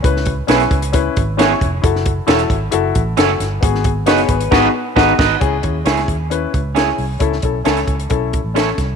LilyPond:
<<
  \new Staff \with { instrumentName = "Clean electric guitar" } { \time 4/4 \key cis \minor \tempo 4 = 134 r1 | r1 | r4 cis''8 b'8 r2 | r1 |
r1 | }
  \new Staff \with { instrumentName = "Clean electric guitar" } { \time 4/4 \key cis \minor r4 <b e' gis' cis''>8 r4. <b e' gis' cis''>8 r8 | r4 <cis' e' a' cis''>8 r4. <cis' e' a' cis''>8 r8 | r4 <dis' fis' b' dis''>8 r8 <dis' fis' b' dis''>8 r8 <dis' fis' b' dis''>8 <dis' fis' b' dis''>8 | r4 <cis' e' gis' cis''>8 r4. <cis' e' gis' cis''>8 r8 |
r4 <cis' e' a' cis''>8 r4. <cis' e' a' cis''>8 r8 | }
  \new Staff \with { instrumentName = "Grand piano" } { \time 4/4 \key cis \minor <cis' e' b'>8 r8 <cis' e' b'>8 r8 <cis' e' b'>8 r8 <cis' e' cis''>8 r8 | <e' fis' a'>8 r8 <e' fis' a'>8 r8 <e' fis' a'>8 r8 <e' fis' a'>8 r8 | <b fis' gis'>8 r8 <b fis' gis'>8 r8 <b fis' gis'>8 r8 <b fis' gis' fis''>8 r8 | <cis' e' gis'>8 <cis' e' gis'>8 <cis' e' gis'>8 r8 <cis' e' b'>8 r8 <cis' e' gis'>8 r8 |
<cis' e' a'>8 <cis' e' a'>8 <cis' e' a'>8 r8 <cis' e' a'>8 r8 <cis' e' a'>8 r8 | }
  \new Staff \with { instrumentName = "Fingered electric bass" } { \clef bass \time 4/4 \key cis \minor cis,4 b,,8 cis,4 gis,,4 eis,,8 | fis,,4 e,,8 gis,,8 fis,,8 a,,8 fis,,8 g,,8 | gis,,4 fis,,8 gis,,8 gis,,8 r8 gis,,8 gis,,8 | cis,8 dis,8 cis,8 dis,4 cis,4 bis,,8 |
cis,8 b,,8 cis,8 cis,8 b,,8. a,,8. bis,,8 | }
  \new DrumStaff \with { instrumentName = "Drums" } \drummode { \time 4/4 <hh bd>16 sn16 <hh bd>8 <hh sn>16 <hh sn>16 <hh bd>16 hh16 <hh bd>8 <hh bd>8 <hh sn>8 <hh bd>8 | <hh bd>16 sn16 <hh bd>8 <hh sn>16 hh16 <hh bd>8 hh8 <hh bd>8 <hh sn>8 <hh sn>8 | <hh bd>16 sn16 <hh bd>8 <hh sn>16 <hh sn>16 <hh bd>16 hh16 <cymc bd sn>4 <bd sn>8 <cymc bd sn>8 | <hh bd>8 <hh bd>8 <hh sn>16 <hh sn>16 <hh bd>8 hh8 <hh bd>8 <hh sn>8 hho8 |
<hh bd>16 sn16 <hh bd>8 <hh sn>16 <hh sn>16 <hh bd>16 hh16 <hh bd>8 <hh bd>8 <hh sn>8 <hh bd sn>8 | }
>>